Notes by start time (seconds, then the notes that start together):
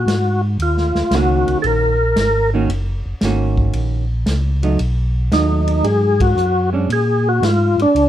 Already playing: F#4
0.06 G#2, snare, hi-hat pedal, ride
0.59 D#2 F4, ride
0.77 snare
0.95 D#2, snare
1.11 C#2 D#3 A#3 C#4 F#4, snare, hi-hat pedal, ride
1.15 F#4
1.47 C#2, ride
1.62 A#1 A4, ride
1.66 A#4
2.16 G#1, snare, hi-hat pedal, ride
2.54 D#3 A#3 C#4 F#4
2.69 F#1, ride
3.06 F#1
3.21 G#1 D#3 A#3 C#4, snare, hi-hat pedal, ride
3.25 F#4
3.58 kick
3.73 A#1, ride
4.26 C#2, snare, hi-hat pedal, ride
4.63 F#3 A3 D#4, ride
4.79 B1, ride
5.32 D#2 F#3 A3 D#4, snare, hi-hat pedal, ride
5.67 ride
5.84 G#2 G#4, ride
6.20 F#4, kick, ride
6.36 F#2, hi-hat pedal
6.73 G#3 C#4 D4
6.89 A#2 G#4, ride
7.29 F#4
7.42 G#2 F4, snare, hi-hat pedal, ride
7.78 G#2, ride
7.82 D4
7.95 C#2, ride